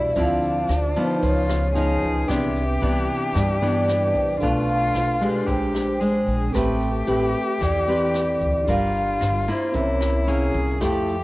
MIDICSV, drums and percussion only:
0, 0, Header, 1, 2, 480
1, 0, Start_track
1, 0, Tempo, 532104
1, 142, Time_signature, 4, 2, 24, 8
1, 10137, End_track
2, 0, Start_track
2, 0, Title_t, "Drums"
2, 137, Note_on_c, 9, 82, 57
2, 141, Note_on_c, 9, 42, 41
2, 145, Note_on_c, 9, 36, 58
2, 228, Note_off_c, 9, 82, 0
2, 231, Note_off_c, 9, 42, 0
2, 235, Note_off_c, 9, 36, 0
2, 378, Note_on_c, 9, 82, 27
2, 388, Note_on_c, 9, 42, 26
2, 468, Note_off_c, 9, 82, 0
2, 478, Note_off_c, 9, 42, 0
2, 616, Note_on_c, 9, 82, 68
2, 623, Note_on_c, 9, 37, 52
2, 623, Note_on_c, 9, 42, 37
2, 707, Note_off_c, 9, 82, 0
2, 713, Note_off_c, 9, 37, 0
2, 713, Note_off_c, 9, 42, 0
2, 856, Note_on_c, 9, 82, 26
2, 866, Note_on_c, 9, 42, 26
2, 946, Note_off_c, 9, 82, 0
2, 956, Note_off_c, 9, 42, 0
2, 1101, Note_on_c, 9, 82, 62
2, 1106, Note_on_c, 9, 36, 56
2, 1109, Note_on_c, 9, 42, 42
2, 1191, Note_off_c, 9, 82, 0
2, 1196, Note_off_c, 9, 36, 0
2, 1199, Note_off_c, 9, 42, 0
2, 1346, Note_on_c, 9, 37, 58
2, 1346, Note_on_c, 9, 42, 26
2, 1346, Note_on_c, 9, 82, 26
2, 1436, Note_off_c, 9, 37, 0
2, 1436, Note_off_c, 9, 42, 0
2, 1437, Note_off_c, 9, 82, 0
2, 1582, Note_on_c, 9, 82, 65
2, 1589, Note_on_c, 9, 42, 43
2, 1672, Note_off_c, 9, 82, 0
2, 1679, Note_off_c, 9, 42, 0
2, 1826, Note_on_c, 9, 36, 49
2, 1827, Note_on_c, 9, 42, 27
2, 1828, Note_on_c, 9, 82, 25
2, 1916, Note_off_c, 9, 36, 0
2, 1917, Note_off_c, 9, 42, 0
2, 1918, Note_off_c, 9, 82, 0
2, 2061, Note_on_c, 9, 82, 66
2, 2066, Note_on_c, 9, 36, 59
2, 2071, Note_on_c, 9, 37, 56
2, 2071, Note_on_c, 9, 42, 44
2, 2152, Note_off_c, 9, 82, 0
2, 2157, Note_off_c, 9, 36, 0
2, 2161, Note_off_c, 9, 37, 0
2, 2161, Note_off_c, 9, 42, 0
2, 2299, Note_on_c, 9, 82, 27
2, 2308, Note_on_c, 9, 42, 25
2, 2390, Note_off_c, 9, 82, 0
2, 2398, Note_off_c, 9, 42, 0
2, 2534, Note_on_c, 9, 82, 61
2, 2548, Note_on_c, 9, 42, 41
2, 2625, Note_off_c, 9, 82, 0
2, 2638, Note_off_c, 9, 42, 0
2, 2781, Note_on_c, 9, 82, 26
2, 2787, Note_on_c, 9, 42, 27
2, 2871, Note_off_c, 9, 82, 0
2, 2877, Note_off_c, 9, 42, 0
2, 3011, Note_on_c, 9, 82, 62
2, 3024, Note_on_c, 9, 36, 53
2, 3025, Note_on_c, 9, 37, 57
2, 3025, Note_on_c, 9, 42, 39
2, 3101, Note_off_c, 9, 82, 0
2, 3114, Note_off_c, 9, 36, 0
2, 3115, Note_off_c, 9, 37, 0
2, 3115, Note_off_c, 9, 42, 0
2, 3255, Note_on_c, 9, 82, 27
2, 3265, Note_on_c, 9, 42, 26
2, 3345, Note_off_c, 9, 82, 0
2, 3355, Note_off_c, 9, 42, 0
2, 3494, Note_on_c, 9, 82, 66
2, 3501, Note_on_c, 9, 37, 55
2, 3501, Note_on_c, 9, 42, 38
2, 3585, Note_off_c, 9, 82, 0
2, 3592, Note_off_c, 9, 37, 0
2, 3592, Note_off_c, 9, 42, 0
2, 3732, Note_on_c, 9, 82, 25
2, 3744, Note_on_c, 9, 36, 51
2, 3745, Note_on_c, 9, 42, 24
2, 3823, Note_off_c, 9, 82, 0
2, 3834, Note_off_c, 9, 36, 0
2, 3835, Note_off_c, 9, 42, 0
2, 3974, Note_on_c, 9, 82, 61
2, 3984, Note_on_c, 9, 36, 59
2, 3987, Note_on_c, 9, 42, 39
2, 4065, Note_off_c, 9, 82, 0
2, 4075, Note_off_c, 9, 36, 0
2, 4077, Note_off_c, 9, 42, 0
2, 4220, Note_on_c, 9, 82, 28
2, 4225, Note_on_c, 9, 42, 23
2, 4310, Note_off_c, 9, 82, 0
2, 4315, Note_off_c, 9, 42, 0
2, 4456, Note_on_c, 9, 82, 66
2, 4461, Note_on_c, 9, 37, 54
2, 4461, Note_on_c, 9, 42, 36
2, 4546, Note_off_c, 9, 82, 0
2, 4551, Note_off_c, 9, 37, 0
2, 4551, Note_off_c, 9, 42, 0
2, 4699, Note_on_c, 9, 82, 26
2, 4704, Note_on_c, 9, 42, 26
2, 4789, Note_off_c, 9, 82, 0
2, 4794, Note_off_c, 9, 42, 0
2, 4940, Note_on_c, 9, 82, 67
2, 4942, Note_on_c, 9, 36, 55
2, 4945, Note_on_c, 9, 42, 39
2, 5030, Note_off_c, 9, 82, 0
2, 5033, Note_off_c, 9, 36, 0
2, 5035, Note_off_c, 9, 42, 0
2, 5184, Note_on_c, 9, 37, 58
2, 5184, Note_on_c, 9, 42, 27
2, 5185, Note_on_c, 9, 82, 26
2, 5274, Note_off_c, 9, 37, 0
2, 5274, Note_off_c, 9, 42, 0
2, 5275, Note_off_c, 9, 82, 0
2, 5424, Note_on_c, 9, 82, 66
2, 5427, Note_on_c, 9, 42, 41
2, 5514, Note_off_c, 9, 82, 0
2, 5517, Note_off_c, 9, 42, 0
2, 5659, Note_on_c, 9, 82, 25
2, 5665, Note_on_c, 9, 42, 27
2, 5749, Note_off_c, 9, 82, 0
2, 5756, Note_off_c, 9, 42, 0
2, 5894, Note_on_c, 9, 82, 62
2, 5904, Note_on_c, 9, 36, 54
2, 5905, Note_on_c, 9, 37, 57
2, 5905, Note_on_c, 9, 42, 41
2, 5985, Note_off_c, 9, 82, 0
2, 5994, Note_off_c, 9, 36, 0
2, 5995, Note_off_c, 9, 37, 0
2, 5995, Note_off_c, 9, 42, 0
2, 6139, Note_on_c, 9, 82, 28
2, 6150, Note_on_c, 9, 42, 26
2, 6230, Note_off_c, 9, 82, 0
2, 6240, Note_off_c, 9, 42, 0
2, 6376, Note_on_c, 9, 82, 59
2, 6387, Note_on_c, 9, 42, 44
2, 6466, Note_off_c, 9, 82, 0
2, 6477, Note_off_c, 9, 42, 0
2, 6620, Note_on_c, 9, 82, 25
2, 6630, Note_on_c, 9, 42, 27
2, 6711, Note_off_c, 9, 82, 0
2, 6721, Note_off_c, 9, 42, 0
2, 6863, Note_on_c, 9, 82, 66
2, 6864, Note_on_c, 9, 37, 57
2, 6864, Note_on_c, 9, 42, 41
2, 6865, Note_on_c, 9, 36, 55
2, 6953, Note_off_c, 9, 82, 0
2, 6954, Note_off_c, 9, 37, 0
2, 6954, Note_off_c, 9, 42, 0
2, 6956, Note_off_c, 9, 36, 0
2, 7098, Note_on_c, 9, 82, 25
2, 7109, Note_on_c, 9, 42, 28
2, 7188, Note_off_c, 9, 82, 0
2, 7199, Note_off_c, 9, 42, 0
2, 7343, Note_on_c, 9, 82, 64
2, 7344, Note_on_c, 9, 37, 55
2, 7344, Note_on_c, 9, 42, 43
2, 7433, Note_off_c, 9, 82, 0
2, 7434, Note_off_c, 9, 37, 0
2, 7434, Note_off_c, 9, 42, 0
2, 7579, Note_on_c, 9, 82, 25
2, 7587, Note_on_c, 9, 42, 26
2, 7588, Note_on_c, 9, 36, 48
2, 7669, Note_off_c, 9, 82, 0
2, 7677, Note_off_c, 9, 42, 0
2, 7678, Note_off_c, 9, 36, 0
2, 7822, Note_on_c, 9, 82, 59
2, 7826, Note_on_c, 9, 42, 41
2, 7829, Note_on_c, 9, 36, 56
2, 7912, Note_off_c, 9, 82, 0
2, 7916, Note_off_c, 9, 42, 0
2, 7919, Note_off_c, 9, 36, 0
2, 8064, Note_on_c, 9, 42, 25
2, 8068, Note_on_c, 9, 82, 27
2, 8154, Note_off_c, 9, 42, 0
2, 8158, Note_off_c, 9, 82, 0
2, 8306, Note_on_c, 9, 82, 62
2, 8307, Note_on_c, 9, 37, 55
2, 8307, Note_on_c, 9, 42, 37
2, 8396, Note_off_c, 9, 82, 0
2, 8397, Note_off_c, 9, 37, 0
2, 8397, Note_off_c, 9, 42, 0
2, 8544, Note_on_c, 9, 42, 25
2, 8545, Note_on_c, 9, 82, 25
2, 8634, Note_off_c, 9, 42, 0
2, 8635, Note_off_c, 9, 82, 0
2, 8778, Note_on_c, 9, 82, 59
2, 8786, Note_on_c, 9, 42, 41
2, 8790, Note_on_c, 9, 36, 55
2, 8868, Note_off_c, 9, 82, 0
2, 8876, Note_off_c, 9, 42, 0
2, 8880, Note_off_c, 9, 36, 0
2, 9027, Note_on_c, 9, 37, 56
2, 9027, Note_on_c, 9, 42, 27
2, 9030, Note_on_c, 9, 82, 26
2, 9117, Note_off_c, 9, 37, 0
2, 9117, Note_off_c, 9, 42, 0
2, 9121, Note_off_c, 9, 82, 0
2, 9267, Note_on_c, 9, 42, 44
2, 9271, Note_on_c, 9, 82, 64
2, 9357, Note_off_c, 9, 42, 0
2, 9361, Note_off_c, 9, 82, 0
2, 9510, Note_on_c, 9, 82, 26
2, 9511, Note_on_c, 9, 36, 54
2, 9512, Note_on_c, 9, 42, 25
2, 9600, Note_off_c, 9, 82, 0
2, 9602, Note_off_c, 9, 36, 0
2, 9602, Note_off_c, 9, 42, 0
2, 9749, Note_on_c, 9, 37, 61
2, 9749, Note_on_c, 9, 42, 42
2, 9752, Note_on_c, 9, 36, 57
2, 9752, Note_on_c, 9, 82, 61
2, 9840, Note_off_c, 9, 37, 0
2, 9840, Note_off_c, 9, 42, 0
2, 9842, Note_off_c, 9, 36, 0
2, 9842, Note_off_c, 9, 82, 0
2, 9989, Note_on_c, 9, 42, 27
2, 9991, Note_on_c, 9, 82, 28
2, 10079, Note_off_c, 9, 42, 0
2, 10081, Note_off_c, 9, 82, 0
2, 10137, End_track
0, 0, End_of_file